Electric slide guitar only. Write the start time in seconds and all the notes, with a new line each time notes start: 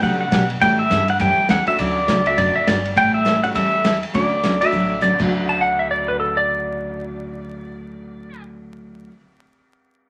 2.27 E5
2.38 D5
2.55 E5
2.67 D5
4.61 E5
5.02 D5
5.49 A5
5.61 F#5
5.79 E5
5.91 D5
6.08 B4
6.20 A4
6.37 D5